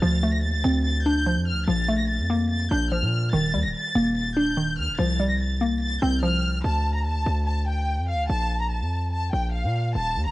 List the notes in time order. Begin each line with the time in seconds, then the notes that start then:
0.02 D2 F3 A6
0.23 A3
0.33 A#6
0.43 D#2 A6
0.54 D2
0.64 D2 C4
0.85 A6
1.06 D4 G6
1.26 F3
1.37 F2
1.47 F6
1.52 D2
1.68 A#1 F3 A6
1.88 A3
1.99 A#6
2.09 A6
2.19 F2
2.30 A#3
2.50 A6
2.71 A#1 D4 G6
2.92 F3 F6
3.02 A#2
3.33 D#1 D#3 A6
3.54 D#2 G3
3.64 D#1 A#6
3.75 A6
3.95 D#1 A#3
4.16 A6
4.37 D4 G6
4.57 D#3
4.78 D#2 F6
4.88 D#1
4.99 C2 F3 A6
5.20 G3
5.30 A#6
5.40 A6
5.61 A#3
5.81 A6
6.02 C2 C4 G6
6.23 F3 F6
6.64 D2 A5
6.95 A#5
7.06 D#2 A5
7.16 D2
7.26 D2
7.47 A5
7.68 G5
7.99 F2
8.09 F5
8.14 D2
8.30 A#1 A5
8.61 A#5
8.71 A5
8.81 F2
9.12 A5
9.33 A#1 G5
9.54 F5
9.64 A#2
9.95 D#1 A5
10.16 D#2
10.26 D#1 A#5